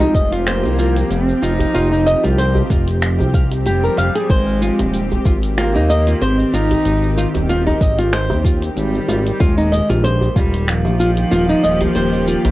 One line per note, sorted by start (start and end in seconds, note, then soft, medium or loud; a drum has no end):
0.00 4.26 F3 medium
0.00 0.15 G#3 loud
0.00 9.36 C4 medium
0.00 0.13 D#4 medium
0.00 4.26 F4 medium
0.00 9.36 G4 medium
0.00 djembe bass loud
0.00 shaker soft
0.14 0.66 F1 loud
0.14 0.30 D#5 medium
0.14 kick loud
0.14 shaker medium
0.32 0.46 F4 medium
0.32 closed hi-hat medium
0.32 shaker soft
0.47 1.12 A#3 loud
0.47 0.77 C5 medium
0.47 finger snap medium
0.47 closed hi-hat soft
0.47 shaker soft
0.63 1.03 C2 medium
0.63 djembe slap soft
0.63 djembe tone medium
0.63 shaker soft
0.79 0.95 F4 medium
0.79 shaker medium
0.96 closed hi-hat medium
0.96 shaker soft
1.10 1.34 F1 loud
1.10 1.43 C4 loud
1.10 closed hi-hat soft
1.10 shaker soft
1.28 djembe tone soft
1.28 shaker soft
1.42 1.66 F1 medium
1.42 2.06 D#4 loud
1.42 1.52 F4 medium
1.42 shaker medium
1.59 closed hi-hat medium
1.59 djembe tone soft
1.59 djembe bass medium
1.59 shaker soft
1.74 2.15 F1 loud
1.74 1.90 F4 loud
1.74 closed hi-hat soft
1.74 shaker soft
1.92 2.05 D#4 medium
1.92 shaker soft
2.06 2.22 D#5 medium
2.06 shaker medium
2.24 2.63 C2 medium
2.24 2.37 F4 medium
2.24 closed hi-hat medium
2.24 djembe slap medium
2.24 djembe bass medium
2.24 shaker soft
2.38 2.69 C5 medium
2.38 closed hi-hat soft
2.38 shaker soft
2.55 djembe slap soft
2.55 djembe bass loud
2.55 shaker soft
2.70 3.21 F1 medium
2.70 2.87 F4 medium
2.70 kick loud
2.70 shaker medium
2.88 closed hi-hat medium
2.88 djembe tone soft
2.88 shaker soft
3.02 finger snap medium
3.02 closed hi-hat soft
3.02 shaker soft
3.19 3.68 C2 medium
3.19 djembe slap soft
3.19 djembe bass loud
3.19 shaker soft
3.34 3.50 F5 medium
3.34 kick loud
3.34 shaker medium
3.51 closed hi-hat medium
3.51 djembe tone medium
3.51 shaker soft
3.65 3.89 F1 loud
3.65 4.31 G3 medium
3.65 3.83 G4 medium
3.65 closed hi-hat soft
3.65 shaker soft
3.84 3.96 A#4 medium
3.84 shaker soft
3.97 4.10 F1 medium
3.97 4.14 F5 loud
3.97 djembe slap medium
3.97 shaker medium
4.15 4.28 G#4 medium
4.15 closed hi-hat soft
4.15 shaker soft
4.29 4.71 G#1 loud
4.29 9.36 D#3 medium
4.29 5.25 G#3 loud
4.29 4.60 C5 medium
4.29 kick loud
4.29 closed hi-hat soft
4.29 shaker soft
4.48 shaker soft
4.62 4.78 F4 medium
4.62 shaker medium
4.79 5.18 D#1 medium
4.79 closed hi-hat medium
4.79 djembe slap medium
4.79 djembe bass medium
4.79 shaker soft
4.94 closed hi-hat soft
4.94 shaker soft
5.11 djembe slap soft
5.11 djembe bass medium
5.11 shaker soft
5.25 5.77 G#1 medium
5.25 5.36 F4 medium
5.25 kick loud
5.25 shaker medium
5.43 closed hi-hat medium
5.43 shaker soft
5.58 6.23 A#3 medium
5.58 5.73 F4 loud
5.58 finger snap medium
5.58 closed hi-hat soft
5.58 shaker soft
5.75 6.14 D#2 medium
5.75 5.88 D#4 medium
5.75 djembe slap soft
5.75 djembe tone medium
5.75 shaker soft
5.90 6.05 D#5 medium
5.90 shaker medium
6.07 6.21 F4 medium
6.07 closed hi-hat medium
6.07 shaker soft
6.21 6.44 G#1 loud
6.21 6.55 C4 loud
6.21 6.52 C5 medium
6.21 closed hi-hat soft
6.21 shaker soft
6.39 djembe tone soft
6.39 shaker soft
6.53 6.76 G#1 medium
6.53 7.17 D#4 loud
6.53 6.70 F4 medium
6.53 shaker medium
6.71 closed hi-hat medium
6.71 djembe tone soft
6.71 djembe bass medium
6.71 shaker soft
6.85 7.26 G#1 loud
6.85 closed hi-hat soft
6.85 shaker soft
7.04 shaker soft
7.17 7.27 F4 medium
7.17 shaker medium
7.34 7.74 D#1 medium
7.34 closed hi-hat medium
7.34 djembe slap medium
7.34 djembe bass medium
7.34 shaker soft
7.49 7.65 F4 loud
7.49 closed hi-hat soft
7.49 shaker soft
7.66 7.79 D#4 medium
7.66 djembe slap soft
7.66 djembe bass medium
7.66 shaker soft
7.81 8.32 G#1 medium
7.81 7.97 D#5 medium
7.81 kick loud
7.81 shaker medium
7.98 8.12 F4 medium
7.98 closed hi-hat medium
7.98 djembe tone soft
7.98 shaker soft
8.13 8.43 C5 medium
8.13 finger snap medium
8.13 closed hi-hat soft
8.13 shaker soft
8.30 8.69 D#2 medium
8.30 djembe slap medium
8.30 djembe bass loud
8.30 shaker soft
8.44 8.61 F4 medium
8.44 kick loud
8.44 shaker medium
8.62 closed hi-hat medium
8.62 djembe tone medium
8.62 shaker soft
8.76 9.00 G#1 loud
8.76 9.42 G3 loud
8.76 closed hi-hat soft
8.76 shaker soft
8.95 shaker soft
9.08 9.31 G#1 medium
9.08 9.18 F4 medium
9.08 djembe slap medium
9.08 shaker medium
9.27 closed hi-hat medium
9.27 shaker soft
9.40 9.81 D#1 loud
9.40 12.51 D#3 medium
9.40 10.04 G#3 loud
9.40 12.51 A#3 medium
9.40 9.56 F4 loud
9.40 12.51 F4 medium
9.40 12.51 G4 loud
9.40 kick loud
9.40 closed hi-hat soft
9.40 shaker soft
9.58 9.71 D#4 medium
9.58 shaker soft
9.72 9.88 D#5 medium
9.72 shaker medium
9.89 10.29 A#1 medium
9.89 10.03 F4 medium
9.89 closed hi-hat medium
9.89 djembe slap medium
9.89 djembe bass medium
9.89 shaker soft
10.04 10.34 C5 medium
10.04 closed hi-hat soft
10.04 shaker soft
10.21 djembe slap soft
10.21 djembe bass medium
10.21 shaker soft
10.36 10.87 D#1 loud
10.36 10.69 G3 loud
10.36 10.53 F4 medium
10.36 kick medium
10.36 shaker medium
10.54 closed hi-hat medium
10.54 shaker soft
10.68 12.51 F3 loud
10.68 finger snap medium
10.68 closed hi-hat soft
10.68 shaker soft
10.85 11.25 A#1 medium
10.85 djembe slap medium
10.85 djembe tone medium
10.85 shaker soft
11.00 11.10 F4 medium
11.00 shaker medium
11.17 closed hi-hat medium
11.17 shaker soft
11.31 11.55 D#1 loud
11.31 11.47 F4 loud
11.31 closed hi-hat soft
11.31 shaker soft
11.48 11.62 D#4 medium
11.48 djembe tone soft
11.48 shaker soft
11.63 11.87 D#1 medium
11.63 11.79 D#5 medium
11.63 shaker medium
11.81 11.95 F4 medium
11.81 closed hi-hat medium
11.81 djembe tone soft
11.81 djembe bass medium
11.81 shaker soft
11.95 12.36 D#1 loud
11.95 12.26 C5 medium
11.95 closed hi-hat soft
11.95 shaker soft
12.13 shaker soft
12.27 12.44 F4 medium
12.27 shaker medium
12.45 12.51 A#1 medium
12.45 closed hi-hat medium
12.45 djembe slap medium
12.45 djembe bass medium
12.45 shaker soft